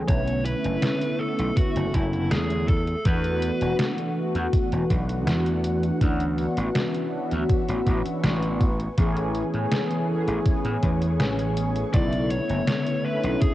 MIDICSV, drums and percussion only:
0, 0, Header, 1, 2, 480
1, 0, Start_track
1, 0, Key_signature, 3, "major"
1, 0, Tempo, 740741
1, 57, Time_signature, 4, 2, 24, 8
1, 8776, End_track
2, 0, Start_track
2, 0, Title_t, "Drums"
2, 56, Note_on_c, 9, 42, 93
2, 57, Note_on_c, 9, 36, 109
2, 121, Note_off_c, 9, 42, 0
2, 122, Note_off_c, 9, 36, 0
2, 180, Note_on_c, 9, 42, 39
2, 244, Note_off_c, 9, 42, 0
2, 296, Note_on_c, 9, 42, 65
2, 361, Note_off_c, 9, 42, 0
2, 419, Note_on_c, 9, 42, 42
2, 484, Note_off_c, 9, 42, 0
2, 535, Note_on_c, 9, 38, 115
2, 535, Note_on_c, 9, 42, 92
2, 600, Note_off_c, 9, 38, 0
2, 600, Note_off_c, 9, 42, 0
2, 659, Note_on_c, 9, 42, 38
2, 724, Note_off_c, 9, 42, 0
2, 899, Note_on_c, 9, 42, 41
2, 964, Note_off_c, 9, 42, 0
2, 1016, Note_on_c, 9, 42, 90
2, 1017, Note_on_c, 9, 36, 111
2, 1081, Note_off_c, 9, 42, 0
2, 1082, Note_off_c, 9, 36, 0
2, 1140, Note_on_c, 9, 42, 42
2, 1204, Note_off_c, 9, 42, 0
2, 1257, Note_on_c, 9, 36, 60
2, 1257, Note_on_c, 9, 42, 69
2, 1322, Note_off_c, 9, 36, 0
2, 1322, Note_off_c, 9, 42, 0
2, 1380, Note_on_c, 9, 42, 40
2, 1445, Note_off_c, 9, 42, 0
2, 1496, Note_on_c, 9, 38, 119
2, 1496, Note_on_c, 9, 42, 97
2, 1561, Note_off_c, 9, 38, 0
2, 1561, Note_off_c, 9, 42, 0
2, 1620, Note_on_c, 9, 42, 39
2, 1685, Note_off_c, 9, 42, 0
2, 1737, Note_on_c, 9, 36, 106
2, 1737, Note_on_c, 9, 42, 68
2, 1802, Note_off_c, 9, 36, 0
2, 1802, Note_off_c, 9, 42, 0
2, 1859, Note_on_c, 9, 42, 39
2, 1924, Note_off_c, 9, 42, 0
2, 1975, Note_on_c, 9, 42, 94
2, 1977, Note_on_c, 9, 36, 118
2, 2040, Note_off_c, 9, 42, 0
2, 2042, Note_off_c, 9, 36, 0
2, 2099, Note_on_c, 9, 42, 39
2, 2163, Note_off_c, 9, 42, 0
2, 2216, Note_on_c, 9, 42, 62
2, 2280, Note_off_c, 9, 42, 0
2, 2339, Note_on_c, 9, 42, 41
2, 2404, Note_off_c, 9, 42, 0
2, 2456, Note_on_c, 9, 38, 120
2, 2456, Note_on_c, 9, 42, 98
2, 2521, Note_off_c, 9, 38, 0
2, 2521, Note_off_c, 9, 42, 0
2, 2580, Note_on_c, 9, 42, 39
2, 2644, Note_off_c, 9, 42, 0
2, 2819, Note_on_c, 9, 42, 41
2, 2884, Note_off_c, 9, 42, 0
2, 2937, Note_on_c, 9, 36, 118
2, 2937, Note_on_c, 9, 42, 92
2, 3002, Note_off_c, 9, 36, 0
2, 3002, Note_off_c, 9, 42, 0
2, 3060, Note_on_c, 9, 42, 42
2, 3125, Note_off_c, 9, 42, 0
2, 3177, Note_on_c, 9, 36, 61
2, 3177, Note_on_c, 9, 42, 66
2, 3242, Note_off_c, 9, 36, 0
2, 3242, Note_off_c, 9, 42, 0
2, 3300, Note_on_c, 9, 42, 40
2, 3365, Note_off_c, 9, 42, 0
2, 3416, Note_on_c, 9, 38, 121
2, 3416, Note_on_c, 9, 42, 102
2, 3481, Note_off_c, 9, 38, 0
2, 3481, Note_off_c, 9, 42, 0
2, 3540, Note_on_c, 9, 42, 38
2, 3605, Note_off_c, 9, 42, 0
2, 3656, Note_on_c, 9, 42, 68
2, 3721, Note_off_c, 9, 42, 0
2, 3780, Note_on_c, 9, 42, 40
2, 3845, Note_off_c, 9, 42, 0
2, 3897, Note_on_c, 9, 36, 118
2, 3897, Note_on_c, 9, 42, 93
2, 3962, Note_off_c, 9, 36, 0
2, 3962, Note_off_c, 9, 42, 0
2, 4020, Note_on_c, 9, 42, 38
2, 4085, Note_off_c, 9, 42, 0
2, 4137, Note_on_c, 9, 42, 64
2, 4201, Note_off_c, 9, 42, 0
2, 4259, Note_on_c, 9, 42, 39
2, 4324, Note_off_c, 9, 42, 0
2, 4376, Note_on_c, 9, 38, 120
2, 4376, Note_on_c, 9, 42, 93
2, 4441, Note_off_c, 9, 38, 0
2, 4441, Note_off_c, 9, 42, 0
2, 4499, Note_on_c, 9, 42, 39
2, 4564, Note_off_c, 9, 42, 0
2, 4738, Note_on_c, 9, 42, 39
2, 4803, Note_off_c, 9, 42, 0
2, 4856, Note_on_c, 9, 36, 123
2, 4856, Note_on_c, 9, 42, 91
2, 4921, Note_off_c, 9, 36, 0
2, 4921, Note_off_c, 9, 42, 0
2, 4979, Note_on_c, 9, 42, 41
2, 5044, Note_off_c, 9, 42, 0
2, 5097, Note_on_c, 9, 36, 64
2, 5097, Note_on_c, 9, 42, 63
2, 5161, Note_off_c, 9, 36, 0
2, 5162, Note_off_c, 9, 42, 0
2, 5220, Note_on_c, 9, 42, 40
2, 5285, Note_off_c, 9, 42, 0
2, 5337, Note_on_c, 9, 38, 127
2, 5337, Note_on_c, 9, 42, 99
2, 5402, Note_off_c, 9, 38, 0
2, 5402, Note_off_c, 9, 42, 0
2, 5460, Note_on_c, 9, 42, 39
2, 5524, Note_off_c, 9, 42, 0
2, 5577, Note_on_c, 9, 36, 115
2, 5577, Note_on_c, 9, 42, 67
2, 5641, Note_off_c, 9, 42, 0
2, 5642, Note_off_c, 9, 36, 0
2, 5700, Note_on_c, 9, 42, 39
2, 5764, Note_off_c, 9, 42, 0
2, 5816, Note_on_c, 9, 42, 90
2, 5817, Note_on_c, 9, 36, 116
2, 5880, Note_off_c, 9, 42, 0
2, 5882, Note_off_c, 9, 36, 0
2, 5939, Note_on_c, 9, 42, 38
2, 6003, Note_off_c, 9, 42, 0
2, 6056, Note_on_c, 9, 42, 63
2, 6120, Note_off_c, 9, 42, 0
2, 6179, Note_on_c, 9, 42, 38
2, 6244, Note_off_c, 9, 42, 0
2, 6295, Note_on_c, 9, 38, 120
2, 6295, Note_on_c, 9, 42, 92
2, 6359, Note_off_c, 9, 38, 0
2, 6359, Note_off_c, 9, 42, 0
2, 6418, Note_on_c, 9, 42, 37
2, 6483, Note_off_c, 9, 42, 0
2, 6658, Note_on_c, 9, 42, 37
2, 6723, Note_off_c, 9, 42, 0
2, 6775, Note_on_c, 9, 42, 84
2, 6776, Note_on_c, 9, 36, 117
2, 6840, Note_off_c, 9, 42, 0
2, 6841, Note_off_c, 9, 36, 0
2, 6898, Note_on_c, 9, 42, 38
2, 6963, Note_off_c, 9, 42, 0
2, 7014, Note_on_c, 9, 42, 62
2, 7016, Note_on_c, 9, 36, 63
2, 7079, Note_off_c, 9, 42, 0
2, 7081, Note_off_c, 9, 36, 0
2, 7137, Note_on_c, 9, 42, 38
2, 7202, Note_off_c, 9, 42, 0
2, 7254, Note_on_c, 9, 38, 120
2, 7254, Note_on_c, 9, 42, 93
2, 7319, Note_off_c, 9, 38, 0
2, 7319, Note_off_c, 9, 42, 0
2, 7378, Note_on_c, 9, 42, 37
2, 7443, Note_off_c, 9, 42, 0
2, 7495, Note_on_c, 9, 42, 64
2, 7559, Note_off_c, 9, 42, 0
2, 7617, Note_on_c, 9, 42, 37
2, 7682, Note_off_c, 9, 42, 0
2, 7734, Note_on_c, 9, 42, 86
2, 7736, Note_on_c, 9, 36, 118
2, 7799, Note_off_c, 9, 42, 0
2, 7801, Note_off_c, 9, 36, 0
2, 7858, Note_on_c, 9, 42, 36
2, 7922, Note_off_c, 9, 42, 0
2, 7974, Note_on_c, 9, 42, 59
2, 8039, Note_off_c, 9, 42, 0
2, 8098, Note_on_c, 9, 42, 36
2, 8162, Note_off_c, 9, 42, 0
2, 8214, Note_on_c, 9, 38, 118
2, 8214, Note_on_c, 9, 42, 89
2, 8279, Note_off_c, 9, 38, 0
2, 8279, Note_off_c, 9, 42, 0
2, 8337, Note_on_c, 9, 42, 36
2, 8402, Note_off_c, 9, 42, 0
2, 8577, Note_on_c, 9, 42, 37
2, 8642, Note_off_c, 9, 42, 0
2, 8694, Note_on_c, 9, 42, 83
2, 8696, Note_on_c, 9, 36, 115
2, 8758, Note_off_c, 9, 42, 0
2, 8761, Note_off_c, 9, 36, 0
2, 8776, End_track
0, 0, End_of_file